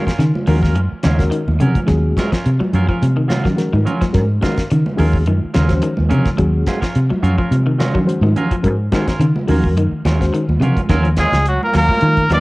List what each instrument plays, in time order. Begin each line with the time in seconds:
Already playing: clean electric guitar D#3, reed electric piano G#3 C#4 F#4 A#4
0.07 clean electric guitar C#4 F4 A#4, kick, snare, closed hi-hat
0.19 clean electric guitar C#3, fingered electric bass D#3, snare, closed hi-hat
0.35 high conga
0.47 fingered electric bass D#2, clean electric guitar D#3 F#3 C#4 F4 A#4, reed electric piano G#3 C#4 F#4 A#4, open hi-hat, low conga
0.63 clean electric guitar C#4 F4 A#4, kick, snare
0.76 fingered electric bass F#2, muted clean electric guitar stroke, closed hi-hat, high conga
0.92 muted fingered electric bass stroke
1.03 fingered electric bass D#2, clean electric guitar C#3 F#3 C#4 F4 A#4, snare, closed hi-hat, high conga
1.18 reed electric piano G#3 C#4 F#4 A#4, kick, snare, closed hi-hat
1.31 clean electric guitar D#3, closed hi-hat
1.48 fingered electric bass D#2, high conga
1.60 fingered electric bass C3, clean electric guitar C#3 F#3 C#4 A#4, muted clean electric guitar stroke, closed hi-hat, low conga
1.75 kick, closed hi-hat, high conga
1.86 fingered electric bass D#2, clean electric guitar F#3, reed electric piano G#3 C#4 F#4 G#4, kick, snare, closed hi-hat
2.17 clean electric guitar F#3 C#4 F4 A#4, kick, snare, closed hi-hat, high conga
2.32 clean electric guitar F3 C#4 F4 A#4, kick, snare, closed hi-hat
2.46 fingered electric bass C3, closed hi-hat
2.60 clean electric guitar F#3, muted fingered electric bass stroke, high conga
2.73 fingered electric bass F#2, clean electric guitar F#3 C#4 F4 A#4, closed hi-hat, low conga
2.88 clean electric guitar F3 C#4 F4 A#4, kick
3.02 fingered electric bass C3, closed hi-hat, high conga
3.17 clean electric guitar D#3
3.28 clean electric guitar F#3 F4 A#4, reed electric piano F#4 C#5, snare, closed hi-hat, high conga
3.43 fingered electric bass D#3, clean electric guitar F#3, reed electric piano F#4 A#4, kick, snare, low conga
3.56 reed electric piano G#3 C#4 F#4 A#4, snare, closed hi-hat
3.73 fingered electric bass G#2, clean electric guitar D#3, high conga
3.85 clean electric guitar F#3 C#4 F4 A#4, closed hi-hat, low conga
4.01 clean electric guitar F3, muted fingered electric bass stroke, kick, snare, closed hi-hat, high conga
4.13 fingered electric bass G#2, reed electric piano G#3 C#4 F#4 A#4, kick, snare, closed hi-hat
4.41 clean electric guitar D#3 F#3 F4 A#4, reed electric piano G#3 C#4 F#4 A#4, kick, snare, closed hi-hat, high conga
4.57 kick, snare, closed hi-hat
4.70 clean electric guitar C#3, fingered electric bass D#3, closed hi-hat
4.86 high conga
4.97 fingered electric bass D#2, clean electric guitar D#3 F#3 C#4 F4 A#4, reed electric piano G#3 C#4 F#4 G#4, open hi-hat, low conga
5.13 kick
5.26 fingered electric bass F#2, clean electric guitar D#3, closed hi-hat, high conga
5.44 muted fingered electric bass stroke
5.54 fingered electric bass D#2, clean electric guitar C#3 F#3 C#4 F4 A#4, snare, closed hi-hat, high conga
5.68 reed electric piano G#3 C#4 F#4 C5, kick, snare, closed hi-hat, low conga
5.82 clean electric guitar D#3, closed hi-hat
5.97 fingered electric bass D#2, high conga
6.09 fingered electric bass C3, clean electric guitar C#3 F#3 C#4 F4 A#4, closed hi-hat, high conga, low conga
6.25 kick, snare, closed hi-hat, high conga
6.38 fingered electric bass D#2, clean electric guitar F#3, reed electric piano G#3 C#4 F#4 G#4, kick, closed hi-hat
6.66 clean electric guitar F#3 C#4 F4, muted clean electric guitar stroke, kick, snare, closed hi-hat, high conga
6.81 clean electric guitar F3 C#4 F4 A#4, kick, snare, closed hi-hat
6.95 fingered electric bass C3, closed hi-hat
7.10 clean electric guitar F#3, muted fingered electric bass stroke, high conga
7.23 fingered electric bass F#2, clean electric guitar F#3 C#4 F4 A#4, closed hi-hat, low conga
7.38 clean electric guitar F3 C#4 F4 A#4, kick
7.51 fingered electric bass C3, closed hi-hat, high conga
7.67 clean electric guitar D#3
7.78 clean electric guitar F#3 C#4 F4 A#4, reed electric piano F#4 A#4, snare, closed hi-hat, high conga
7.94 fingered electric bass D#3, clean electric guitar F#3, reed electric piano F#4 A#4, kick, low conga
8.06 reed electric piano G#3 C#4 F#4 C5, closed hi-hat
8.21 fingered electric bass G#2, clean electric guitar D#3, high conga
8.36 clean electric guitar F#3 C#4 F4 A#4, closed hi-hat, low conga
8.51 clean electric guitar F3, muted fingered electric bass stroke, kick, closed hi-hat
8.63 fingered electric bass G#2, reed electric piano G#3 C#4 F#4 A#4, kick, closed hi-hat
8.92 clean electric guitar D#3 F#3 C#4 F4 A#4, reed electric piano G#3 C#4 F#4 C5, kick, snare, closed hi-hat, high conga
9.08 clean electric guitar C#4 F4 A#4, kick, snare, closed hi-hat
9.19 clean electric guitar C#3, fingered electric bass D#3, closed hi-hat
9.36 high conga
9.47 fingered electric bass D#2, clean electric guitar D#3 F#3 C#4, reed electric piano G#3 C#4 F#4 A#4, open hi-hat, low conga
9.51 clean electric guitar F4 A#4
9.64 kick
9.75 fingered electric bass F#2, clean electric guitar D#3, closed hi-hat, high conga
9.92 muted fingered electric bass stroke
10.05 fingered electric bass D#2, clean electric guitar F#3 C#4 F4 A#4, muted clean electric guitar stroke, snare, closed hi-hat, high conga
10.19 reed electric piano G#3 C#4 F#4 C5, kick, snare, closed hi-hat
10.34 clean electric guitar D#3, closed hi-hat
10.49 fingered electric bass D#2, high conga
10.60 fingered electric bass C3, clean electric guitar C#3 F#3 C#4 F4 A#4, closed hi-hat, low conga
10.77 kick, closed hi-hat, high conga
10.89 fingered electric bass D#2, clean electric guitar D#3 F#3 C#4 F4 A#4, kick, snare, closed hi-hat, low conga
11.04 clean electric guitar F3, closed hi-hat
11.17 clean electric guitar F#3 C#4 F4 A#4, trumpet G#4, kick, snare, closed hi-hat, high conga
11.22 trombone G#3
11.32 fingered electric bass C#2, snare, closed hi-hat, high conga
11.46 trombone F#3, trumpet F#4, closed hi-hat
11.63 trombone A#3, trumpet A#4, high conga
11.73 fingered electric bass D#2, clean electric guitar F#3 C#4 F4 A#4, trombone A#3, snare, open hi-hat
11.77 trumpet A#4
11.89 clean electric guitar C#4 F4 A#4, kick, high conga
12.01 fingered electric bass D#3, closed hi-hat, high conga
12.17 kick, closed hi-hat
12.29 fingered electric bass D#2, clean electric guitar F3 F#3 C#4 F4 A#4, trumpet D#5, snare, closed hi-hat, high conga
12.34 trombone D#4